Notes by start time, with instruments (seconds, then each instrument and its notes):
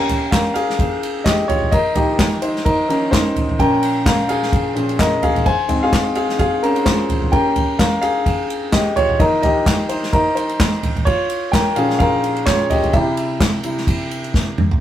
Already playing: grand piano A#3 C#4 G4 A#4 G5
0.09 floor tom, ride
0.31 grand piano A#4 F5, kick, snare, clap, ride
0.54 grand piano G#4 F5, ride
0.70 snare
0.79 kick, ride
1.03 ride
1.24 grand piano G4 D#5, kick, snare, clap, ride
1.48 grand piano F4 C#5, floor tom, ride
1.62 floor tom
1.71 grand piano A#4 D#5, kick, ride
1.95 grand piano D#3 F3 A#3 G4 D#5, floor tom, ride
2.19 kick, snare, clap, ride
2.42 grand piano D#4 C5, ride
2.56 snare
2.65 grand piano D#4 A#4, kick, ride
2.88 grand piano D#3 F3 A#3 C#4 A#4, ride
3.11 grand piano D#4 C5, kick, snare, clap, ride
3.36 floor tom, ride
3.49 floor tom
3.59 grand piano A#2 F3 C#4 A#4 G5, kick, ride
3.83 ride
4.06 grand piano A#4 F5, kick, snare, clap, ride
4.29 grand piano G#4 F5, ride
4.43 snare
4.53 kick, ride
4.75 grand piano A#2 F3 C#4, ride
4.89 ride
4.99 grand piano A#4 D#5, kick, snare, clap, ride
5.22 grand piano G#4 F5, floor tom, ride
5.36 floor tom, ride
5.46 grand piano C5 G#5, kick, ride
5.68 grand piano G#2 G#3 C4, floor tom, ride
5.83 grand piano G#4 F5
5.93 kick, snare, clap, ride
6.15 grand piano G#4 F5, ride
6.29 snare
6.39 grand piano G#4 F5, kick, ride
6.63 grand piano C#4 A#4, ride
6.76 ride
6.85 grand piano F4 C5, kick, snare, clap, ride
7.09 floor tom, ride
7.22 floor tom
7.32 grand piano A#3 C#4 G4 A#4 G5, kick, ride
7.56 floor tom, ride
7.79 grand piano A#4 F5, kick, snare, clap, ride
8.02 grand piano G#4 F5, ride
8.26 kick, ride
8.50 ride
8.72 grand piano G4 D#5, kick, snare, clap, ride
8.96 grand piano F4 C#5, floor tom, ride
9.09 floor tom
9.19 grand piano D#3 F3 A#3 A#4 D#5, kick, ride
9.43 grand piano G4 D#5, floor tom, ride
9.66 kick, snare, clap, ride
9.89 grand piano D#4 C5, ride
10.03 snare
10.13 grand piano D#4 A#4, kick, ride
10.35 grand piano D#4 C5, ride
10.49 ride
10.60 kick, snare, clap, ride
10.83 floor tom, ride
10.96 floor tom, ride
11.05 grand piano F4 C#5, kick, ride
11.30 ride
11.52 grand piano A#4 G5, kick, snare, clap, ride
11.76 grand piano A#2 F3 C#4 G#4 F5, ride
11.90 snare
11.99 grand piano A#4 F5, kick, ride
12.24 ride
12.36 ride
12.46 grand piano F4 C#5, kick, snare, clap, ride
12.70 grand piano G4 D#5, floor tom, ride
12.83 floor tom, ride
12.93 grand piano C3 G3 E4 G4 E5, kick, ride
13.17 ride
13.40 kick, snare, clap, ride
13.63 grand piano C3 G3 E4, ride
13.78 snare
13.87 kick, ride
14.11 ride
14.24 ride
14.34 kick, snare
14.58 mid tom
14.71 floor tom